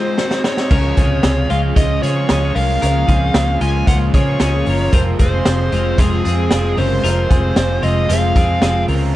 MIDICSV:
0, 0, Header, 1, 7, 480
1, 0, Start_track
1, 0, Key_signature, -5, "major"
1, 0, Tempo, 527704
1, 642, Time_signature, 4, 2, 24, 8
1, 8328, End_track
2, 0, Start_track
2, 0, Title_t, "Lead electric guitar"
2, 0, Program_c, 0, 29
2, 0, Note_on_c, 0, 72, 81
2, 370, Note_off_c, 0, 72, 0
2, 412, Note_on_c, 0, 73, 78
2, 1369, Note_on_c, 0, 77, 102
2, 1396, Note_off_c, 0, 73, 0
2, 1433, Note_off_c, 0, 77, 0
2, 1608, Note_on_c, 0, 75, 99
2, 1838, Note_off_c, 0, 75, 0
2, 1841, Note_on_c, 0, 73, 101
2, 2321, Note_on_c, 0, 77, 106
2, 2337, Note_off_c, 0, 73, 0
2, 3286, Note_off_c, 0, 77, 0
2, 3289, Note_on_c, 0, 80, 95
2, 3523, Note_off_c, 0, 80, 0
2, 3526, Note_on_c, 0, 78, 104
2, 3591, Note_off_c, 0, 78, 0
2, 3769, Note_on_c, 0, 73, 95
2, 4487, Note_off_c, 0, 73, 0
2, 4490, Note_on_c, 0, 72, 94
2, 4554, Note_off_c, 0, 72, 0
2, 4726, Note_on_c, 0, 72, 101
2, 5448, Note_on_c, 0, 68, 85
2, 5466, Note_off_c, 0, 72, 0
2, 6170, Note_on_c, 0, 72, 93
2, 6187, Note_off_c, 0, 68, 0
2, 7124, Note_off_c, 0, 72, 0
2, 7127, Note_on_c, 0, 75, 93
2, 7364, Note_on_c, 0, 77, 83
2, 7372, Note_off_c, 0, 75, 0
2, 8047, Note_off_c, 0, 77, 0
2, 8328, End_track
3, 0, Start_track
3, 0, Title_t, "Clean electric guitar"
3, 0, Program_c, 1, 27
3, 0, Note_on_c, 1, 65, 65
3, 163, Note_off_c, 1, 65, 0
3, 167, Note_on_c, 1, 66, 61
3, 403, Note_on_c, 1, 68, 62
3, 404, Note_off_c, 1, 66, 0
3, 641, Note_off_c, 1, 68, 0
3, 645, Note_on_c, 1, 70, 114
3, 881, Note_off_c, 1, 70, 0
3, 885, Note_on_c, 1, 68, 75
3, 893, Note_on_c, 1, 48, 59
3, 1335, Note_off_c, 1, 68, 0
3, 1340, Note_off_c, 1, 48, 0
3, 1841, Note_on_c, 1, 68, 72
3, 1850, Note_on_c, 1, 60, 57
3, 2071, Note_off_c, 1, 68, 0
3, 2082, Note_on_c, 1, 68, 73
3, 2086, Note_off_c, 1, 60, 0
3, 2319, Note_off_c, 1, 68, 0
3, 2323, Note_on_c, 1, 70, 67
3, 2556, Note_off_c, 1, 70, 0
3, 2567, Note_on_c, 1, 70, 117
3, 2797, Note_off_c, 1, 70, 0
3, 2801, Note_on_c, 1, 68, 79
3, 2811, Note_on_c, 1, 60, 59
3, 3253, Note_off_c, 1, 68, 0
3, 3259, Note_off_c, 1, 60, 0
3, 3770, Note_on_c, 1, 68, 74
3, 3779, Note_on_c, 1, 60, 56
3, 3996, Note_off_c, 1, 68, 0
3, 4007, Note_on_c, 1, 68, 77
3, 4011, Note_off_c, 1, 60, 0
3, 4245, Note_off_c, 1, 68, 0
3, 4249, Note_on_c, 1, 70, 76
3, 4478, Note_off_c, 1, 70, 0
3, 4489, Note_on_c, 1, 70, 111
3, 4725, Note_off_c, 1, 70, 0
3, 4729, Note_on_c, 1, 68, 76
3, 5178, Note_off_c, 1, 68, 0
3, 5683, Note_on_c, 1, 68, 76
3, 5915, Note_off_c, 1, 68, 0
3, 5926, Note_on_c, 1, 68, 76
3, 6158, Note_off_c, 1, 68, 0
3, 6162, Note_on_c, 1, 70, 64
3, 6167, Note_on_c, 1, 61, 56
3, 6389, Note_off_c, 1, 70, 0
3, 6400, Note_on_c, 1, 70, 105
3, 6405, Note_off_c, 1, 61, 0
3, 6636, Note_off_c, 1, 70, 0
3, 6640, Note_on_c, 1, 68, 73
3, 7093, Note_off_c, 1, 68, 0
3, 7603, Note_on_c, 1, 68, 79
3, 7829, Note_off_c, 1, 68, 0
3, 7840, Note_on_c, 1, 68, 78
3, 8080, Note_off_c, 1, 68, 0
3, 8083, Note_on_c, 1, 70, 71
3, 8091, Note_on_c, 1, 61, 50
3, 8311, Note_off_c, 1, 70, 0
3, 8326, Note_off_c, 1, 61, 0
3, 8328, End_track
4, 0, Start_track
4, 0, Title_t, "Overdriven electric guitar"
4, 0, Program_c, 2, 29
4, 0, Note_on_c, 2, 56, 41
4, 0, Note_on_c, 2, 60, 48
4, 0, Note_on_c, 2, 63, 53
4, 151, Note_off_c, 2, 56, 0
4, 153, Note_on_c, 2, 51, 57
4, 158, Note_off_c, 2, 60, 0
4, 162, Note_off_c, 2, 63, 0
4, 162, Note_on_c, 2, 56, 63
4, 168, Note_on_c, 2, 60, 60
4, 175, Note_on_c, 2, 63, 59
4, 389, Note_off_c, 2, 63, 0
4, 397, Note_off_c, 2, 51, 0
4, 399, Note_on_c, 2, 63, 55
4, 402, Note_off_c, 2, 56, 0
4, 402, Note_off_c, 2, 60, 0
4, 413, Note_on_c, 2, 60, 47
4, 423, Note_on_c, 2, 56, 45
4, 635, Note_off_c, 2, 56, 0
4, 640, Note_on_c, 2, 49, 82
4, 641, Note_off_c, 2, 63, 0
4, 646, Note_on_c, 2, 56, 88
4, 647, Note_off_c, 2, 60, 0
4, 651, Note_on_c, 2, 61, 81
4, 654, Note_on_c, 2, 65, 78
4, 869, Note_off_c, 2, 65, 0
4, 879, Note_off_c, 2, 61, 0
4, 880, Note_on_c, 2, 65, 58
4, 881, Note_off_c, 2, 49, 0
4, 884, Note_off_c, 2, 56, 0
4, 890, Note_on_c, 2, 61, 50
4, 899, Note_on_c, 2, 56, 48
4, 1115, Note_off_c, 2, 56, 0
4, 1116, Note_on_c, 2, 49, 75
4, 1121, Note_off_c, 2, 65, 0
4, 1123, Note_off_c, 2, 61, 0
4, 1126, Note_on_c, 2, 56, 71
4, 1134, Note_on_c, 2, 61, 79
4, 1139, Note_on_c, 2, 65, 84
4, 1347, Note_off_c, 2, 65, 0
4, 1358, Note_on_c, 2, 65, 49
4, 1359, Note_off_c, 2, 49, 0
4, 1361, Note_off_c, 2, 61, 0
4, 1364, Note_off_c, 2, 56, 0
4, 1372, Note_on_c, 2, 61, 47
4, 1380, Note_on_c, 2, 56, 47
4, 1588, Note_off_c, 2, 56, 0
4, 1595, Note_off_c, 2, 61, 0
4, 1596, Note_on_c, 2, 49, 82
4, 1598, Note_off_c, 2, 65, 0
4, 1599, Note_on_c, 2, 56, 79
4, 1605, Note_on_c, 2, 61, 91
4, 1609, Note_on_c, 2, 65, 90
4, 1825, Note_off_c, 2, 65, 0
4, 1834, Note_off_c, 2, 61, 0
4, 1836, Note_on_c, 2, 65, 64
4, 1839, Note_off_c, 2, 49, 0
4, 1841, Note_off_c, 2, 56, 0
4, 1845, Note_on_c, 2, 61, 52
4, 1855, Note_on_c, 2, 56, 48
4, 2069, Note_off_c, 2, 56, 0
4, 2072, Note_on_c, 2, 49, 52
4, 2078, Note_off_c, 2, 61, 0
4, 2080, Note_off_c, 2, 65, 0
4, 2080, Note_on_c, 2, 56, 58
4, 2089, Note_on_c, 2, 61, 58
4, 2091, Note_on_c, 2, 65, 70
4, 2303, Note_off_c, 2, 65, 0
4, 2314, Note_on_c, 2, 65, 52
4, 2318, Note_off_c, 2, 49, 0
4, 2318, Note_off_c, 2, 61, 0
4, 2321, Note_off_c, 2, 56, 0
4, 2329, Note_on_c, 2, 61, 52
4, 2336, Note_on_c, 2, 56, 41
4, 2551, Note_off_c, 2, 56, 0
4, 2556, Note_off_c, 2, 61, 0
4, 2556, Note_on_c, 2, 49, 77
4, 2559, Note_off_c, 2, 65, 0
4, 2562, Note_on_c, 2, 56, 74
4, 2567, Note_on_c, 2, 61, 83
4, 2572, Note_on_c, 2, 65, 86
4, 2783, Note_off_c, 2, 65, 0
4, 2794, Note_on_c, 2, 65, 63
4, 2796, Note_off_c, 2, 61, 0
4, 2799, Note_off_c, 2, 49, 0
4, 2802, Note_off_c, 2, 56, 0
4, 2807, Note_on_c, 2, 61, 53
4, 2814, Note_on_c, 2, 56, 44
4, 3036, Note_off_c, 2, 56, 0
4, 3039, Note_off_c, 2, 65, 0
4, 3039, Note_on_c, 2, 49, 79
4, 3042, Note_off_c, 2, 61, 0
4, 3047, Note_on_c, 2, 56, 77
4, 3053, Note_on_c, 2, 61, 67
4, 3062, Note_on_c, 2, 65, 78
4, 3264, Note_off_c, 2, 65, 0
4, 3275, Note_on_c, 2, 65, 53
4, 3279, Note_off_c, 2, 61, 0
4, 3281, Note_off_c, 2, 49, 0
4, 3285, Note_off_c, 2, 56, 0
4, 3290, Note_on_c, 2, 61, 51
4, 3301, Note_on_c, 2, 56, 46
4, 3514, Note_off_c, 2, 56, 0
4, 3518, Note_off_c, 2, 61, 0
4, 3519, Note_off_c, 2, 65, 0
4, 3520, Note_on_c, 2, 49, 78
4, 3525, Note_on_c, 2, 56, 83
4, 3529, Note_on_c, 2, 61, 84
4, 3534, Note_on_c, 2, 65, 82
4, 3747, Note_off_c, 2, 65, 0
4, 3756, Note_off_c, 2, 61, 0
4, 3758, Note_on_c, 2, 65, 55
4, 3762, Note_off_c, 2, 49, 0
4, 3764, Note_off_c, 2, 56, 0
4, 3767, Note_on_c, 2, 61, 55
4, 3780, Note_on_c, 2, 56, 49
4, 3994, Note_off_c, 2, 56, 0
4, 3997, Note_on_c, 2, 49, 60
4, 4001, Note_off_c, 2, 65, 0
4, 4003, Note_off_c, 2, 61, 0
4, 4005, Note_on_c, 2, 56, 60
4, 4013, Note_on_c, 2, 61, 62
4, 4019, Note_on_c, 2, 65, 65
4, 4225, Note_off_c, 2, 65, 0
4, 4236, Note_on_c, 2, 65, 54
4, 4237, Note_off_c, 2, 61, 0
4, 4240, Note_off_c, 2, 49, 0
4, 4244, Note_off_c, 2, 56, 0
4, 4248, Note_on_c, 2, 61, 58
4, 4257, Note_on_c, 2, 56, 41
4, 4477, Note_off_c, 2, 56, 0
4, 4480, Note_off_c, 2, 65, 0
4, 4481, Note_on_c, 2, 53, 83
4, 4486, Note_off_c, 2, 61, 0
4, 4488, Note_on_c, 2, 56, 84
4, 4491, Note_on_c, 2, 60, 91
4, 4501, Note_on_c, 2, 65, 76
4, 4712, Note_off_c, 2, 65, 0
4, 4722, Note_off_c, 2, 53, 0
4, 4723, Note_on_c, 2, 65, 57
4, 4724, Note_off_c, 2, 60, 0
4, 4726, Note_off_c, 2, 56, 0
4, 4735, Note_on_c, 2, 60, 55
4, 4745, Note_on_c, 2, 56, 44
4, 4952, Note_off_c, 2, 56, 0
4, 4957, Note_on_c, 2, 53, 68
4, 4959, Note_off_c, 2, 60, 0
4, 4963, Note_off_c, 2, 65, 0
4, 4963, Note_on_c, 2, 56, 66
4, 4970, Note_on_c, 2, 60, 68
4, 4977, Note_on_c, 2, 65, 66
4, 5195, Note_off_c, 2, 65, 0
4, 5200, Note_off_c, 2, 53, 0
4, 5203, Note_off_c, 2, 56, 0
4, 5206, Note_on_c, 2, 65, 57
4, 5207, Note_off_c, 2, 60, 0
4, 5220, Note_on_c, 2, 60, 55
4, 5227, Note_on_c, 2, 56, 47
4, 5435, Note_off_c, 2, 56, 0
4, 5442, Note_off_c, 2, 60, 0
4, 5442, Note_on_c, 2, 53, 74
4, 5445, Note_off_c, 2, 65, 0
4, 5446, Note_on_c, 2, 56, 88
4, 5453, Note_on_c, 2, 60, 80
4, 5458, Note_on_c, 2, 65, 89
4, 5672, Note_off_c, 2, 65, 0
4, 5681, Note_off_c, 2, 60, 0
4, 5682, Note_off_c, 2, 53, 0
4, 5683, Note_on_c, 2, 65, 56
4, 5685, Note_off_c, 2, 56, 0
4, 5692, Note_on_c, 2, 60, 50
4, 5705, Note_on_c, 2, 56, 46
4, 5918, Note_off_c, 2, 56, 0
4, 5922, Note_on_c, 2, 53, 53
4, 5923, Note_off_c, 2, 65, 0
4, 5926, Note_off_c, 2, 60, 0
4, 5929, Note_on_c, 2, 56, 54
4, 5937, Note_on_c, 2, 60, 54
4, 5942, Note_on_c, 2, 65, 65
4, 6145, Note_off_c, 2, 65, 0
4, 6152, Note_off_c, 2, 60, 0
4, 6156, Note_on_c, 2, 65, 53
4, 6162, Note_off_c, 2, 56, 0
4, 6163, Note_off_c, 2, 53, 0
4, 6163, Note_on_c, 2, 60, 46
4, 6172, Note_on_c, 2, 56, 43
4, 6391, Note_off_c, 2, 56, 0
4, 6395, Note_on_c, 2, 53, 74
4, 6397, Note_off_c, 2, 60, 0
4, 6400, Note_off_c, 2, 65, 0
4, 6402, Note_on_c, 2, 56, 77
4, 6408, Note_on_c, 2, 60, 80
4, 6411, Note_on_c, 2, 65, 86
4, 6626, Note_off_c, 2, 65, 0
4, 6637, Note_on_c, 2, 65, 60
4, 6639, Note_off_c, 2, 53, 0
4, 6641, Note_off_c, 2, 60, 0
4, 6643, Note_off_c, 2, 56, 0
4, 6651, Note_on_c, 2, 60, 51
4, 6659, Note_on_c, 2, 56, 46
4, 6874, Note_off_c, 2, 56, 0
4, 6874, Note_on_c, 2, 53, 73
4, 6878, Note_off_c, 2, 60, 0
4, 6880, Note_off_c, 2, 65, 0
4, 6885, Note_on_c, 2, 56, 69
4, 6889, Note_on_c, 2, 60, 78
4, 6896, Note_on_c, 2, 65, 79
4, 7106, Note_off_c, 2, 65, 0
4, 7117, Note_on_c, 2, 65, 57
4, 7118, Note_off_c, 2, 53, 0
4, 7118, Note_off_c, 2, 60, 0
4, 7124, Note_off_c, 2, 56, 0
4, 7129, Note_on_c, 2, 60, 52
4, 7137, Note_on_c, 2, 56, 43
4, 7350, Note_off_c, 2, 56, 0
4, 7353, Note_off_c, 2, 60, 0
4, 7353, Note_on_c, 2, 53, 77
4, 7357, Note_off_c, 2, 65, 0
4, 7361, Note_on_c, 2, 56, 79
4, 7364, Note_on_c, 2, 60, 84
4, 7368, Note_on_c, 2, 65, 84
4, 7584, Note_off_c, 2, 65, 0
4, 7595, Note_on_c, 2, 65, 57
4, 7596, Note_off_c, 2, 60, 0
4, 7598, Note_off_c, 2, 53, 0
4, 7602, Note_off_c, 2, 56, 0
4, 7607, Note_on_c, 2, 60, 57
4, 7615, Note_on_c, 2, 56, 46
4, 7839, Note_off_c, 2, 65, 0
4, 7840, Note_off_c, 2, 56, 0
4, 7841, Note_on_c, 2, 53, 60
4, 7845, Note_off_c, 2, 60, 0
4, 7851, Note_on_c, 2, 56, 58
4, 7856, Note_on_c, 2, 60, 61
4, 7861, Note_on_c, 2, 65, 63
4, 8072, Note_off_c, 2, 65, 0
4, 8082, Note_off_c, 2, 53, 0
4, 8082, Note_on_c, 2, 65, 62
4, 8084, Note_off_c, 2, 60, 0
4, 8087, Note_off_c, 2, 56, 0
4, 8095, Note_on_c, 2, 60, 54
4, 8103, Note_on_c, 2, 56, 50
4, 8319, Note_off_c, 2, 56, 0
4, 8322, Note_off_c, 2, 65, 0
4, 8326, Note_off_c, 2, 60, 0
4, 8328, End_track
5, 0, Start_track
5, 0, Title_t, "Analog synth pad"
5, 0, Program_c, 3, 89
5, 647, Note_on_c, 3, 53, 77
5, 649, Note_on_c, 3, 65, 85
5, 650, Note_on_c, 3, 56, 70
5, 2548, Note_off_c, 3, 56, 0
5, 2563, Note_on_c, 3, 58, 70
5, 4449, Note_off_c, 3, 53, 0
5, 4464, Note_off_c, 3, 58, 0
5, 4481, Note_on_c, 3, 56, 69
5, 4482, Note_on_c, 3, 48, 86
5, 8285, Note_off_c, 3, 56, 0
5, 8286, Note_off_c, 3, 48, 0
5, 8290, Note_off_c, 3, 65, 0
5, 8328, End_track
6, 0, Start_track
6, 0, Title_t, "Fingered electric bass"
6, 0, Program_c, 4, 33
6, 644, Note_on_c, 4, 37, 110
6, 840, Note_off_c, 4, 37, 0
6, 886, Note_on_c, 4, 37, 98
6, 1082, Note_off_c, 4, 37, 0
6, 1126, Note_on_c, 4, 37, 102
6, 1321, Note_off_c, 4, 37, 0
6, 1369, Note_on_c, 4, 37, 106
6, 1563, Note_off_c, 4, 37, 0
6, 1606, Note_on_c, 4, 37, 102
6, 1802, Note_off_c, 4, 37, 0
6, 1847, Note_on_c, 4, 49, 91
6, 2042, Note_off_c, 4, 49, 0
6, 2092, Note_on_c, 4, 37, 89
6, 2285, Note_off_c, 4, 37, 0
6, 2325, Note_on_c, 4, 36, 100
6, 2521, Note_off_c, 4, 36, 0
6, 2570, Note_on_c, 4, 37, 101
6, 2764, Note_off_c, 4, 37, 0
6, 2806, Note_on_c, 4, 37, 98
6, 3002, Note_off_c, 4, 37, 0
6, 3042, Note_on_c, 4, 37, 100
6, 3239, Note_off_c, 4, 37, 0
6, 3282, Note_on_c, 4, 37, 96
6, 3479, Note_off_c, 4, 37, 0
6, 3522, Note_on_c, 4, 37, 103
6, 3720, Note_off_c, 4, 37, 0
6, 3765, Note_on_c, 4, 49, 99
6, 3961, Note_off_c, 4, 49, 0
6, 4005, Note_on_c, 4, 37, 76
6, 4201, Note_off_c, 4, 37, 0
6, 4247, Note_on_c, 4, 30, 91
6, 4442, Note_off_c, 4, 30, 0
6, 4482, Note_on_c, 4, 29, 98
6, 4679, Note_off_c, 4, 29, 0
6, 4726, Note_on_c, 4, 29, 94
6, 4922, Note_off_c, 4, 29, 0
6, 4968, Note_on_c, 4, 29, 105
6, 5163, Note_off_c, 4, 29, 0
6, 5209, Note_on_c, 4, 29, 93
6, 5403, Note_off_c, 4, 29, 0
6, 5443, Note_on_c, 4, 29, 93
6, 5640, Note_off_c, 4, 29, 0
6, 5690, Note_on_c, 4, 41, 99
6, 5884, Note_off_c, 4, 41, 0
6, 5926, Note_on_c, 4, 29, 88
6, 6122, Note_off_c, 4, 29, 0
6, 6167, Note_on_c, 4, 30, 89
6, 6362, Note_off_c, 4, 30, 0
6, 6402, Note_on_c, 4, 29, 97
6, 6600, Note_off_c, 4, 29, 0
6, 6647, Note_on_c, 4, 29, 93
6, 6842, Note_off_c, 4, 29, 0
6, 6880, Note_on_c, 4, 29, 96
6, 7078, Note_off_c, 4, 29, 0
6, 7125, Note_on_c, 4, 29, 96
6, 7321, Note_off_c, 4, 29, 0
6, 7364, Note_on_c, 4, 29, 98
6, 7560, Note_off_c, 4, 29, 0
6, 7601, Note_on_c, 4, 41, 86
6, 7799, Note_off_c, 4, 41, 0
6, 7842, Note_on_c, 4, 29, 76
6, 8039, Note_off_c, 4, 29, 0
6, 8079, Note_on_c, 4, 37, 96
6, 8323, Note_off_c, 4, 37, 0
6, 8328, End_track
7, 0, Start_track
7, 0, Title_t, "Drums"
7, 162, Note_on_c, 9, 38, 68
7, 253, Note_off_c, 9, 38, 0
7, 281, Note_on_c, 9, 38, 75
7, 371, Note_off_c, 9, 38, 0
7, 402, Note_on_c, 9, 38, 94
7, 493, Note_off_c, 9, 38, 0
7, 521, Note_on_c, 9, 38, 80
7, 612, Note_off_c, 9, 38, 0
7, 642, Note_on_c, 9, 49, 98
7, 644, Note_on_c, 9, 36, 107
7, 733, Note_off_c, 9, 49, 0
7, 735, Note_off_c, 9, 36, 0
7, 881, Note_on_c, 9, 42, 60
7, 887, Note_on_c, 9, 36, 94
7, 972, Note_off_c, 9, 42, 0
7, 978, Note_off_c, 9, 36, 0
7, 1120, Note_on_c, 9, 38, 108
7, 1124, Note_on_c, 9, 42, 88
7, 1211, Note_off_c, 9, 38, 0
7, 1215, Note_off_c, 9, 42, 0
7, 1364, Note_on_c, 9, 42, 72
7, 1455, Note_off_c, 9, 42, 0
7, 1604, Note_on_c, 9, 36, 84
7, 1608, Note_on_c, 9, 42, 97
7, 1695, Note_off_c, 9, 36, 0
7, 1699, Note_off_c, 9, 42, 0
7, 1850, Note_on_c, 9, 42, 81
7, 1941, Note_off_c, 9, 42, 0
7, 2082, Note_on_c, 9, 38, 95
7, 2089, Note_on_c, 9, 42, 88
7, 2173, Note_off_c, 9, 38, 0
7, 2180, Note_off_c, 9, 42, 0
7, 2326, Note_on_c, 9, 46, 66
7, 2417, Note_off_c, 9, 46, 0
7, 2566, Note_on_c, 9, 42, 92
7, 2657, Note_off_c, 9, 42, 0
7, 2805, Note_on_c, 9, 42, 56
7, 2807, Note_on_c, 9, 36, 86
7, 2896, Note_off_c, 9, 42, 0
7, 2898, Note_off_c, 9, 36, 0
7, 3041, Note_on_c, 9, 38, 120
7, 3045, Note_on_c, 9, 42, 96
7, 3132, Note_off_c, 9, 38, 0
7, 3135, Note_off_c, 9, 42, 0
7, 3283, Note_on_c, 9, 42, 67
7, 3374, Note_off_c, 9, 42, 0
7, 3523, Note_on_c, 9, 36, 95
7, 3527, Note_on_c, 9, 42, 94
7, 3614, Note_off_c, 9, 36, 0
7, 3618, Note_off_c, 9, 42, 0
7, 3764, Note_on_c, 9, 42, 75
7, 3765, Note_on_c, 9, 36, 103
7, 3855, Note_off_c, 9, 42, 0
7, 3856, Note_off_c, 9, 36, 0
7, 4000, Note_on_c, 9, 38, 94
7, 4007, Note_on_c, 9, 42, 95
7, 4091, Note_off_c, 9, 38, 0
7, 4098, Note_off_c, 9, 42, 0
7, 4240, Note_on_c, 9, 46, 63
7, 4331, Note_off_c, 9, 46, 0
7, 4482, Note_on_c, 9, 42, 97
7, 4483, Note_on_c, 9, 36, 104
7, 4573, Note_off_c, 9, 42, 0
7, 4574, Note_off_c, 9, 36, 0
7, 4722, Note_on_c, 9, 42, 62
7, 4726, Note_on_c, 9, 36, 86
7, 4813, Note_off_c, 9, 42, 0
7, 4817, Note_off_c, 9, 36, 0
7, 4961, Note_on_c, 9, 38, 114
7, 4965, Note_on_c, 9, 42, 96
7, 5052, Note_off_c, 9, 38, 0
7, 5056, Note_off_c, 9, 42, 0
7, 5204, Note_on_c, 9, 42, 73
7, 5295, Note_off_c, 9, 42, 0
7, 5442, Note_on_c, 9, 36, 91
7, 5444, Note_on_c, 9, 42, 101
7, 5533, Note_off_c, 9, 36, 0
7, 5535, Note_off_c, 9, 42, 0
7, 5686, Note_on_c, 9, 42, 82
7, 5777, Note_off_c, 9, 42, 0
7, 5918, Note_on_c, 9, 38, 96
7, 5925, Note_on_c, 9, 42, 95
7, 6009, Note_off_c, 9, 38, 0
7, 6016, Note_off_c, 9, 42, 0
7, 6162, Note_on_c, 9, 46, 72
7, 6253, Note_off_c, 9, 46, 0
7, 6406, Note_on_c, 9, 42, 85
7, 6497, Note_off_c, 9, 42, 0
7, 6646, Note_on_c, 9, 36, 91
7, 6646, Note_on_c, 9, 42, 60
7, 6737, Note_off_c, 9, 36, 0
7, 6737, Note_off_c, 9, 42, 0
7, 6879, Note_on_c, 9, 38, 116
7, 6883, Note_on_c, 9, 42, 90
7, 6970, Note_off_c, 9, 38, 0
7, 6974, Note_off_c, 9, 42, 0
7, 7122, Note_on_c, 9, 42, 76
7, 7212, Note_off_c, 9, 42, 0
7, 7364, Note_on_c, 9, 42, 103
7, 7455, Note_off_c, 9, 42, 0
7, 7603, Note_on_c, 9, 36, 93
7, 7606, Note_on_c, 9, 42, 77
7, 7693, Note_off_c, 9, 36, 0
7, 7697, Note_off_c, 9, 42, 0
7, 7838, Note_on_c, 9, 38, 94
7, 7845, Note_on_c, 9, 42, 96
7, 7929, Note_off_c, 9, 38, 0
7, 7936, Note_off_c, 9, 42, 0
7, 8080, Note_on_c, 9, 46, 66
7, 8170, Note_off_c, 9, 46, 0
7, 8328, End_track
0, 0, End_of_file